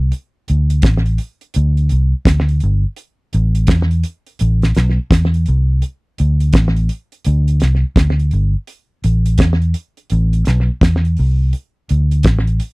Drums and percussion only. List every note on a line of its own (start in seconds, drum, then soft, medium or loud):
0.12 closed hi-hat medium
0.48 closed hi-hat medium
0.70 closed hi-hat medium
0.82 kick loud
0.82 snare loud
0.82 closed hi-hat loud
1.06 closed hi-hat medium
1.18 closed hi-hat loud
1.41 closed hi-hat soft
1.54 closed hi-hat loud
1.77 closed hi-hat soft
1.89 closed hi-hat medium
2.25 kick loud
2.25 snare loud
2.25 closed hi-hat loud
2.49 closed hi-hat medium
2.60 closed hi-hat medium
2.96 closed hi-hat medium
3.33 closed hi-hat medium
3.55 closed hi-hat medium
3.67 kick loud
3.67 snare loud
3.67 closed hi-hat loud
3.91 closed hi-hat medium
4.03 closed hi-hat loud
4.27 closed hi-hat soft
4.39 closed hi-hat loud
4.62 snare medium
4.62 closed hi-hat soft
4.75 snare medium
4.75 closed hi-hat medium
5.11 kick loud
5.11 snare loud
5.11 closed hi-hat loud
5.34 closed hi-hat soft
5.46 closed hi-hat medium
5.82 closed hi-hat medium
6.18 closed hi-hat medium
6.40 closed hi-hat medium
6.53 kick loud
6.53 snare loud
6.53 closed hi-hat loud
6.77 closed hi-hat medium
6.89 closed hi-hat loud
7.12 closed hi-hat soft
7.25 closed hi-hat medium
7.48 closed hi-hat medium
7.60 snare medium
7.60 closed hi-hat medium
7.96 kick loud
7.96 snare loud
7.96 closed hi-hat loud
8.19 closed hi-hat soft
8.31 closed hi-hat medium
8.67 closed hi-hat medium
9.04 closed hi-hat medium
9.26 closed hi-hat medium
9.38 kick loud
9.38 snare loud
9.38 closed hi-hat loud
9.62 closed hi-hat medium
9.74 closed hi-hat loud
9.97 closed hi-hat soft
10.10 closed hi-hat medium
10.33 closed hi-hat medium
10.45 snare medium
10.45 closed hi-hat medium
10.81 kick loud
10.81 snare loud
10.81 closed hi-hat loud
11.05 closed hi-hat soft
11.17 open hi-hat medium
11.53 closed hi-hat medium
11.89 closed hi-hat medium
12.11 closed hi-hat medium
12.23 kick loud
12.23 snare loud
12.23 closed hi-hat medium
12.47 closed hi-hat medium
12.60 closed hi-hat loud